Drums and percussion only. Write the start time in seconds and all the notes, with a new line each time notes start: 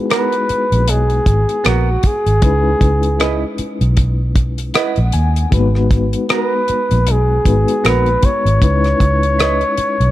0.10 cross-stick, closed hi-hat
0.32 closed hi-hat
0.49 closed hi-hat
0.72 closed hi-hat
0.88 closed hi-hat
1.10 closed hi-hat
1.26 kick, closed hi-hat
1.49 closed hi-hat
1.65 cross-stick, closed hi-hat
2.03 kick, closed hi-hat
2.26 closed hi-hat
2.42 kick, closed hi-hat
2.81 kick, closed hi-hat
3.03 closed hi-hat
3.20 cross-stick, closed hi-hat
3.58 closed hi-hat
3.81 closed hi-hat
3.97 kick, closed hi-hat
4.36 kick, closed hi-hat
4.58 closed hi-hat
4.74 cross-stick, closed hi-hat
4.96 closed hi-hat
5.12 closed hi-hat
5.36 closed hi-hat
5.52 kick, closed hi-hat
5.75 cross-stick
5.91 kick, closed hi-hat
6.13 closed hi-hat
6.29 cross-stick, closed hi-hat
6.68 closed hi-hat
6.91 closed hi-hat
7.07 closed hi-hat
7.45 kick, closed hi-hat
7.68 closed hi-hat
7.85 cross-stick, closed hi-hat
8.06 closed hi-hat
8.23 kick, closed hi-hat
8.46 closed hi-hat
8.62 kick, closed hi-hat
8.84 cross-stick, closed hi-hat
9.00 kick, closed hi-hat
9.23 closed hi-hat
9.39 cross-stick, closed hi-hat
9.61 closed hi-hat
9.78 closed hi-hat
10.01 closed hi-hat